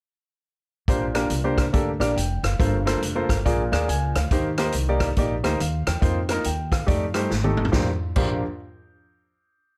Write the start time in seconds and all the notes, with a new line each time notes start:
0.88 A#1 A#2 A#3 D4 G4 C5, kick, closed hi-hat
1.14 A#3 D4 G4 A#4, cross-stick, closed hi-hat
1.30 C2, closed hi-hat
1.44 A#3 D4 G4 C5
1.58 kick, cross-stick, closed hi-hat
1.73 D2 A#3 D4 G4 A4, kick, closed hi-hat
2.00 A#1 A#3 D4 G4 D5, cross-stick, closed hi-hat
2.16 F1 G5, closed hi-hat
2.43 F#1 F5, cross-stick, closed hi-hat
2.59 G1 G2 A#3 F4 A4 C5, kick, closed hi-hat
2.85 A#3 F4 A4 C5, cross-stick, closed hi-hat
3.02 F1, closed hi-hat
3.15 A#3 F4 A4 C5
3.29 G1, kick, cross-stick, closed hi-hat
3.45 A#1 A#2 A#3 F4 G#4 D5, kick, closed hi-hat
3.72 D#2 A#3 F4 G#4 D5, cross-stick, closed hi-hat
3.88 C#2 G#5, closed hi-hat
4.15 D2 F5, cross-stick, closed hi-hat
4.31 D#2 D#3 A#3 D#4 G4 C5, kick, closed hi-hat
4.58 A#3 D#4 G4 C5, cross-stick, closed hi-hat
4.72 C2, closed hi-hat
4.89 A#3 D#4 G4 D5
5.00 kick, cross-stick, closed hi-hat
5.16 A#1 A#3 D#4 G4 D5, kick, closed hi-hat
5.44 D2 A#3 D#4 G4 C5, cross-stick, closed hi-hat
5.60 D#2 F5, closed hi-hat
5.87 E2 G5, cross-stick, closed hi-hat
6.01 F2 A#3 D#4 F4 C5, kick, closed hi-hat
6.29 A#3 D#4 F4 A#4, cross-stick, closed hi-hat
6.44 D#2 G5, closed hi-hat
6.72 F5, kick, cross-stick, closed hi-hat
6.87 F2 A3 D#4 G4 D5, kick, closed hi-hat
7.14 G2 A3 D#4 G4 C5, cross-stick, closed hi-hat
7.31 G#1, snare
7.44 A3 D#4 G4 A4, high tom
7.57 A1, mid tom
7.65 floor tom
7.72 A#1 A#3 D4 G4 C5, kick, snare
8.16 A#1 A#3 D4 G4 C5, kick, crash